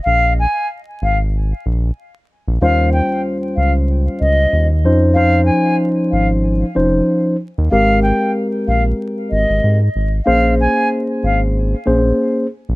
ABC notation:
X:1
M:4/4
L:1/16
Q:"Swing 16ths" 1/4=94
K:Ab
V:1 name="Flute"
f2 a2 z2 f z8 z | f2 g2 z2 f z3 e3 z3 | f2 a2 z2 f z8 z | f2 g2 z2 f z3 e3 z3 |
f2 a2 z2 f z8 z |]
V:2 name="Tine electric piano"
z16 | [E,,G,DFc]12 z2 [F,DEc]2 | [F,DEc]8- [F,DEc]2 [F,DEc]4 z2 | [A,CGB]12 z4 |
[B,DAc]8- [B,DAc]2 [B,DAc]4 z2 |]
V:3 name="Analog synth bass" clef=bass
B,,,3 z3 A,,,4 B,,,2 z3 B,,, | E,,3 z3 D,,4 D,,2 E,,2 F,,2- | F,,3 z3 A,,,4 F,,,2 z3 E,, | A,,,3 z3 B,,,2 z2 A,,, A,,, A,,2 A,,,2 |
B,,,3 z3 A,,,4 B,,,2 z3 B,,, |]